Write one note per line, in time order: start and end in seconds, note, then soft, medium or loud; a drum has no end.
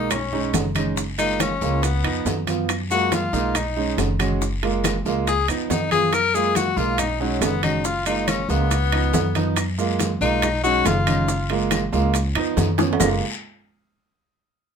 0.00 0.50 B1 medium
0.00 0.11 G#3 medium
0.00 0.11 A#3 medium
0.00 0.11 D#4 medium
0.00 0.13 D#4 medium
0.10 0.54 C#4 medium
0.10 high bongo medium
0.10 high conga soft
0.10 low conga medium
0.10 high timbale medium
0.10 long guiro medium
0.10 claves medium
0.10 maracas medium
0.33 0.63 G#3 medium
0.33 0.63 C#4 medium
0.33 0.63 D#4 medium
0.33 high bongo soft
0.33 high conga soft
0.33 low conga medium
0.53 1.55 F#1 medium
0.53 high bongo soft
0.53 low bongo medium
0.53 high conga medium
0.53 high timbale medium
0.53 low timbale medium
0.53 short guiro medium
0.53 maracas medium
0.75 0.97 G#3 medium
0.75 0.97 C#4 medium
0.75 0.97 D#4 medium
0.75 high conga medium
0.75 high timbale medium
0.75 short guiro medium
0.75 claves medium
0.75 maracas soft
0.96 high bongo medium
0.96 high conga soft
0.96 long guiro medium
0.96 maracas medium
1.18 1.49 G#3 medium
1.18 1.49 A#3 medium
1.18 1.42 D#4 medium
1.18 1.49 F4 medium
1.18 high bongo soft
1.18 high conga soft
1.18 high timbale medium
1.18 maracas medium
1.39 1.85 C#4 medium
1.39 high bongo medium
1.39 high conga medium
1.39 high timbale medium
1.39 low timbale medium
1.39 short guiro medium
1.39 claves medium
1.39 maracas medium
1.61 2.01 C#2 loud
1.61 1.83 G#3 medium
1.61 1.83 A#3 medium
1.61 1.83 F4 medium
1.61 high bongo soft
1.61 short guiro medium
1.61 maracas soft
1.82 2.26 B3 medium
1.82 high bongo medium
1.82 high timbale medium
1.82 long guiro medium
1.82 maracas medium
2.04 2.24 F2 medium
2.04 2.34 F3 medium
2.04 2.35 B3 medium
2.04 2.35 D#4 medium
2.04 high bongo soft
2.04 high conga soft
2.04 high timbale medium
2.04 claves medium
2.25 3.27 F#2 medium
2.25 high bongo soft
2.25 low bongo medium
2.25 high conga medium
2.25 low timbale medium
2.25 short guiro medium
2.25 maracas medium
2.47 2.69 F3 medium
2.47 2.69 B3 medium
2.47 2.69 F4 medium
2.47 high conga medium
2.47 high timbale medium
2.47 short guiro medium
2.47 maracas soft
2.69 high bongo medium
2.69 high conga soft
2.69 high timbale medium
2.69 long guiro medium
2.69 claves medium
2.69 maracas medium
2.91 3.21 G#3 medium
2.91 3.21 A#3 medium
2.91 3.21 F4 medium
2.91 3.15 F#4 loud
2.91 high bongo soft
2.91 high conga soft
2.91 maracas medium
3.12 3.57 F4 medium
3.12 high bongo medium
3.12 high conga loud
3.12 high timbale medium
3.12 low timbale medium
3.12 short guiro medium
3.12 maracas medium
3.33 3.94 B1 medium
3.33 3.55 G#3 medium
3.33 3.55 A#3 medium
3.33 3.55 D#4 medium
3.33 high bongo soft
3.33 short guiro medium
3.33 maracas soft
3.55 3.99 D#4 medium
3.55 high bongo medium
3.55 high conga soft
3.55 low conga medium
3.55 high timbale medium
3.55 long guiro medium
3.55 claves medium
3.55 maracas medium
3.77 4.07 G#3 medium
3.77 4.07 C#4 medium
3.77 4.07 D#4 medium
3.77 high bongo soft
3.77 high conga soft
3.98 4.99 F#1 medium
3.98 high bongo soft
3.98 low bongo medium
3.98 high conga medium
3.98 high timbale medium
3.98 low timbale medium
3.98 short guiro medium
3.98 maracas medium
4.19 4.41 G#3 medium
4.19 4.41 C#4 medium
4.19 4.41 F#4 medium
4.19 high conga medium
4.19 high timbale medium
4.19 short guiro medium
4.19 claves medium
4.19 maracas soft
4.41 high bongo medium
4.41 long guiro medium
4.41 maracas medium
4.63 4.93 G#3 medium
4.63 4.93 A#3 medium
4.63 4.93 F4 loud
4.63 high bongo soft
4.63 high conga soft
4.63 high timbale medium
4.84 high bongo medium
4.84 high conga loud
4.84 high timbale medium
4.84 low timbale medium
4.84 short guiro medium
4.84 claves medium
4.84 maracas medium
5.05 5.45 C#2 medium
5.05 5.27 G#3 loud
5.05 5.27 A#3 medium
5.05 5.27 F4 loud
5.05 high bongo soft
5.05 high conga soft
5.05 short guiro medium
5.05 maracas soft
5.27 5.48 G#4 medium
5.27 high bongo medium
5.27 high conga soft
5.27 high timbale medium
5.27 long guiro medium
5.27 maracas medium
5.48 5.69 F2 medium
5.48 5.79 F3 medium
5.48 5.79 B3 medium
5.48 5.65 B3 medium
5.48 5.79 D#4 medium
5.48 high bongo soft
5.48 high conga soft
5.48 high timbale medium
5.48 claves medium
5.48 maracas medium
5.70 6.72 F#2 medium
5.70 5.91 D#4 medium
5.70 high bongo soft
5.70 low bongo medium
5.70 high conga medium
5.70 low timbale medium
5.70 short guiro medium
5.70 maracas medium
5.91 6.13 F3 medium
5.91 6.13 B3 medium
5.91 6.13 F4 medium
5.91 6.15 G#4 loud
5.91 high conga medium
5.91 high timbale medium
5.91 short guiro medium
5.91 maracas soft
6.13 6.36 A#4 loud
6.13 high bongo medium
6.13 high timbale medium
6.13 long guiro medium
6.13 claves medium
6.13 maracas medium
6.34 6.65 G#3 medium
6.34 6.65 A#3 medium
6.34 6.65 F4 medium
6.34 6.57 G#4 loud
6.34 high bongo soft
6.34 high conga soft
6.34 maracas medium
6.55 6.79 F#4 medium
6.55 high bongo medium
6.55 high conga medium
6.55 high timbale medium
6.55 low timbale medium
6.55 short guiro medium
6.55 maracas medium
6.76 7.38 B1 loud
6.76 6.99 G#3 medium
6.76 6.99 A#3 medium
6.76 6.99 F4 medium
6.76 7.00 F4 medium
6.76 high bongo soft
6.76 short guiro medium
6.76 maracas soft
6.98 7.20 D#4 medium
6.98 high bongo medium
6.98 high conga soft
6.98 low conga medium
6.98 high timbale medium
6.98 long guiro medium
6.98 claves medium
6.98 maracas medium
7.20 7.44 F#3 medium
7.20 7.51 G#3 medium
7.20 7.51 C#4 medium
7.20 7.51 D#4 medium
7.20 high bongo soft
7.20 high conga soft
7.41 8.43 F#1 medium
7.41 7.63 B3 medium
7.41 high bongo soft
7.41 low bongo medium
7.41 high conga medium
7.41 high timbale medium
7.41 low timbale medium
7.41 short guiro medium
7.41 maracas medium
7.63 7.85 G#3 medium
7.63 7.85 C#4 medium
7.63 7.86 D#4 medium
7.63 7.85 F#4 medium
7.63 high conga medium
7.63 high timbale medium
7.63 short guiro medium
7.63 claves medium
7.63 maracas soft
7.85 8.05 F4 medium
7.85 high bongo medium
7.85 high conga soft
7.85 long guiro medium
7.85 maracas medium
8.06 8.37 G#3 medium
8.06 8.37 A#3 medium
8.06 8.29 D#4 medium
8.06 8.37 F4 medium
8.06 high bongo soft
8.06 high conga soft
8.06 high timbale medium
8.06 maracas medium
8.28 8.49 C#4 medium
8.28 high bongo medium
8.28 high conga medium
8.28 high timbale medium
8.28 low timbale medium
8.28 short guiro medium
8.28 claves medium
8.28 maracas medium
8.49 9.10 C#2 loud
8.49 8.71 G#3 medium
8.49 8.71 A#3 medium
8.49 9.53 B3 medium
8.49 8.71 F4 medium
8.49 high bongo soft
8.49 high conga soft
8.49 short guiro medium
8.49 maracas soft
8.71 high bongo medium
8.71 high conga soft
8.71 high timbale medium
8.71 long guiro medium
8.71 maracas medium
8.92 9.23 F3 medium
8.92 9.23 B3 medium
8.92 9.23 D#4 medium
8.92 high bongo soft
8.92 high conga soft
8.92 high timbale medium
8.92 claves medium
9.13 10.15 F#2 medium
9.13 high bongo soft
9.13 low bongo medium
9.13 high conga medium
9.13 low timbale medium
9.13 short guiro medium
9.13 maracas medium
9.35 9.57 F3 medium
9.35 9.57 B3 medium
9.35 9.57 D#4 medium
9.35 high conga medium
9.35 high timbale medium
9.35 short guiro medium
9.35 maracas soft
9.56 high bongo medium
9.56 high timbale medium
9.56 long guiro medium
9.56 claves medium
9.56 maracas medium
9.78 10.09 G#3 medium
9.78 10.09 A#3 medium
9.78 10.09 F4 loud
9.78 high bongo soft
9.78 high conga soft
9.78 maracas medium
9.99 high bongo medium
9.99 high conga loud
9.99 high timbale medium
9.99 low timbale medium
9.99 short guiro medium
9.99 maracas medium
10.21 10.82 B1 loud
10.21 10.43 G#3 medium
10.21 10.43 A#3 medium
10.21 10.61 D#4 medium
10.21 10.43 F4 medium
10.21 high bongo soft
10.21 short guiro medium
10.21 maracas soft
10.42 high bongo medium
10.42 high conga soft
10.42 low conga medium
10.42 high timbale loud
10.42 long guiro medium
10.42 claves medium
10.42 maracas medium
10.63 10.94 G#3 medium
10.63 10.94 C#4 medium
10.63 10.94 D#4 medium
10.63 10.88 F#4 loud
10.63 high bongo soft
10.63 high conga soft
10.63 maracas medium
10.85 11.87 F#1 medium
10.85 11.51 F4 medium
10.85 high bongo soft
10.85 low bongo medium
10.85 high conga medium
10.85 high timbale medium
10.85 low timbale medium
10.85 short guiro medium
10.85 maracas medium
11.07 11.28 G#3 medium
11.07 11.29 C#4 medium
11.07 11.29 D#4 medium
11.07 high conga medium
11.07 high timbale medium
11.07 short guiro medium
11.07 claves medium
11.07 maracas soft
11.28 high bongo medium
11.28 high conga soft
11.28 long guiro medium
11.28 maracas medium
11.50 11.80 G#3 medium
11.50 11.80 A#3 medium
11.50 11.80 F4 loud
11.50 high bongo soft
11.50 high conga soft
11.50 high timbale medium
11.71 high bongo medium
11.71 high conga loud
11.71 high timbale loud
11.71 low timbale medium
11.71 short guiro medium
11.71 claves medium
11.71 maracas medium
11.92 12.33 C#2 medium
11.92 12.14 G#3 medium
11.92 12.14 A#3 medium
11.92 12.14 F4 loud
11.92 high bongo soft
11.92 short guiro medium
11.92 maracas soft
12.14 high bongo medium
12.14 high conga soft
12.14 high timbale medium
12.14 long guiro medium
12.14 maracas medium
12.35 12.56 F2 medium
12.35 12.66 F3 medium
12.35 12.66 B3 medium
12.35 12.66 D#4 loud
12.35 high bongo soft
12.35 high conga soft
12.35 high timbale medium
12.35 claves medium
12.57 12.95 F#2 medium
12.57 high bongo soft
12.57 low bongo medium
12.57 high conga medium
12.57 low timbale medium
12.57 short guiro medium
12.57 maracas medium
12.78 13.00 F3 medium
12.78 13.00 B3 medium
12.78 13.00 C#4 loud
12.78 high bongo loud
12.78 high conga medium
12.78 high timbale medium
12.78 short guiro medium
12.78 maracas soft
12.93 low timbale loud
13.00 13.20 F#1 medium
13.00 13.20 G#3 medium
13.00 13.21 A#3 medium
13.00 13.20 F4 medium
13.00 low bongo loud
13.00 low conga loud
13.00 low timbale loud
13.00 long guiro loud
13.00 claves loud
13.00 maracas loud